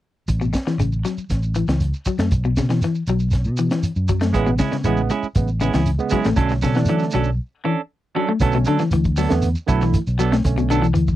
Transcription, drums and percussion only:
0.28 kick, closed hi-hat, shekere
0.41 shekere
0.54 kick, snare, closed hi-hat, shekere
0.67 snare, shekere
0.79 closed hi-hat, shekere
0.92 shekere
1.05 snare, closed hi-hat, shekere
1.18 shekere
1.30 kick, snare, closed hi-hat, shekere
1.43 shekere
1.55 closed hi-hat, shekere
1.67 snare, closed hi-hat, shekere
1.80 closed hi-hat, shekere
1.94 shekere
2.05 kick, closed hi-hat, shekere
2.19 snare, closed hi-hat, shekere
2.31 kick, closed hi-hat, shekere
2.44 shekere
2.56 kick, snare, closed hi-hat, shekere
2.69 snare, shekere
2.82 snare, closed hi-hat, shekere
2.95 shekere
3.07 closed hi-hat, shekere
3.19 shekere
3.31 kick, snare, closed hi-hat, shekere
3.44 shekere
3.57 closed hi-hat, shekere
3.70 snare, closed hi-hat, shekere
3.83 closed hi-hat, shekere
3.96 shekere
4.08 kick, closed hi-hat, shekere
4.21 snare, closed hi-hat, shekere
4.34 kick, closed hi-hat, shekere
4.47 shekere
4.59 kick, snare, closed hi-hat, shekere
4.72 snare, shekere
4.84 closed hi-hat, shekere
4.97 shekere
5.10 closed hi-hat, shekere
5.23 shekere
5.35 kick, closed hi-hat, shekere
5.48 shekere
5.61 closed hi-hat, shekere
5.73 snare, closed hi-hat, shekere
5.86 closed hi-hat, shekere
5.99 shekere
6.10 kick, closed hi-hat, shekere
6.24 snare, closed hi-hat, shekere
6.36 kick, closed hi-hat, shekere
6.49 snare, shekere
6.62 kick, snare, closed hi-hat, shekere
6.74 snare, shekere
6.85 closed hi-hat, shekere
6.99 snare, shekere
7.11 closed hi-hat, shekere
7.24 shekere
8.40 kick, closed hi-hat, shekere
8.52 closed hi-hat, shekere
8.65 closed hi-hat, shekere
8.79 snare, closed hi-hat, shekere
8.91 closed hi-hat, shekere
9.04 kick, closed hi-hat, shekere
9.17 open hi-hat, shekere
9.30 snare, closed hi-hat, shekere
9.42 closed hi-hat, shekere
9.55 shekere
9.68 kick, closed hi-hat, shekere
9.81 snare, shekere
9.94 kick, closed hi-hat, shekere
10.07 closed hi-hat, shekere
10.19 closed hi-hat, shekere
10.32 snare, shekere
10.44 kick, closed hi-hat, shekere
10.57 closed hi-hat, shekere
10.70 closed hi-hat, shekere
10.83 closed hi-hat, shekere
10.95 closed hi-hat, shekere
11.07 kick, shekere

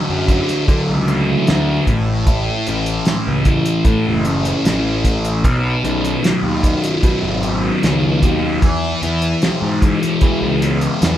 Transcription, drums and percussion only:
0.28 kick, closed hi-hat
0.49 snare, closed hi-hat
0.68 kick, closed hi-hat
1.08 closed hi-hat
1.47 snare, closed hi-hat
1.87 kick, closed hi-hat
2.27 kick, closed hi-hat
2.67 closed hi-hat
2.86 closed hi-hat
3.05 snare, closed hi-hat
3.45 kick, closed hi-hat
3.66 closed hi-hat
3.85 kick, closed hi-hat
4.25 closed hi-hat
4.45 closed hi-hat
4.65 snare, closed hi-hat
5.04 kick, closed hi-hat
5.25 closed hi-hat
5.44 kick, closed hi-hat
5.85 closed hi-hat
6.05 closed hi-hat
6.24 snare, closed hi-hat
6.63 kick, closed hi-hat
6.84 closed hi-hat
7.03 kick, closed hi-hat
7.43 closed hi-hat
7.83 snare, closed hi-hat
8.22 kick, closed hi-hat
8.62 kick, closed hi-hat
9.03 closed hi-hat
9.22 closed hi-hat
9.42 snare, closed hi-hat
9.82 kick, closed hi-hat
10.03 snare, closed hi-hat
10.21 kick, closed hi-hat
10.62 closed hi-hat
10.81 closed hi-hat
11.02 snare, closed hi-hat

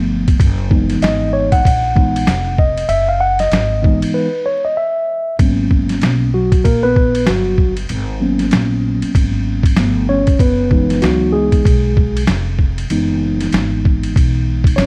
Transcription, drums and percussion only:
0.28 kick, ride
0.40 kick, ride
0.71 kick
0.90 snare, ride
1.02 snare, hi-hat pedal, ride
1.52 kick, ride
1.65 kick, ride
1.96 kick
2.16 ride
2.27 snare, hi-hat pedal, ride
2.58 kick
2.77 ride
2.89 ride
3.39 snare, ride
3.52 snare, hi-hat pedal, ride
3.84 kick
4.02 ride
5.39 kick, ride
5.71 kick
5.89 snare, ride
6.01 snare, hi-hat pedal, ride
6.52 kick, ride
6.65 kick, ride
6.96 kick
7.15 ride
7.27 snare, hi-hat pedal, ride
7.58 kick
7.77 ride
7.89 ride
8.39 snare, ride
8.51 snare, hi-hat pedal, ride
9.02 ride
9.15 kick, ride
9.63 kick, ride
9.76 snare, hi-hat pedal, ride
10.27 kick, ride
10.39 kick, ride
10.71 kick
10.90 snare, ride
11.02 snare, hi-hat pedal, ride
11.52 kick, ride
11.65 kick, ride
11.97 kick
12.17 ride
12.27 snare, hi-hat pedal, ride
12.59 kick
12.78 ride
12.90 ride
13.40 snare, ride
13.52 snare, hi-hat pedal, ride
13.85 kick
14.03 ride
14.16 kick, ride
14.64 kick, ride
14.78 snare, hi-hat pedal, ride

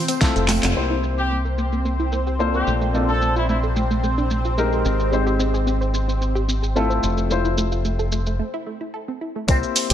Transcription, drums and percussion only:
0.08 closed hi-hat, tambourine, shaker
0.21 kick, snare, closed hi-hat, tambourine, shaker
0.36 closed hi-hat, shaker
0.49 clap, open hi-hat, tambourine, high conga, shaker
0.63 clap, closed hi-hat, tambourine, shaker
0.76 shaker
0.91 shaker
1.03 shaker
1.18 shaker
1.31 shaker
1.45 shaker
1.58 shaker
1.73 shaker
1.85 shaker
2.00 shaker
2.12 shaker
2.27 shaker
2.40 shaker
2.54 shaker
2.67 shaker
2.81 shaker
2.94 shaker
3.09 shaker
3.22 shaker
3.36 shaker
3.49 shaker
3.63 shaker
3.76 shaker
3.91 shaker
4.04 shaker
4.18 shaker
4.31 shaker
4.45 shaker
4.58 shaker
4.73 shaker
4.85 shaker
5.00 shaker
5.13 shaker
5.27 shaker
5.40 shaker
5.54 shaker
5.67 shaker
5.82 shaker
5.94 shaker
6.09 shaker
6.22 shaker
6.36 shaker
6.49 shaker
6.63 shaker
6.76 shaker
6.91 shaker
7.03 shaker
7.18 shaker
7.31 shaker
7.45 shaker
7.58 shaker
7.72 shaker
7.85 shaker
7.99 shaker
8.12 shaker
8.27 shaker
9.48 kick, closed hi-hat, tambourine, shaker
9.63 shaker
9.76 open hi-hat, tambourine, shaker
9.90 closed hi-hat, tambourine, shaker

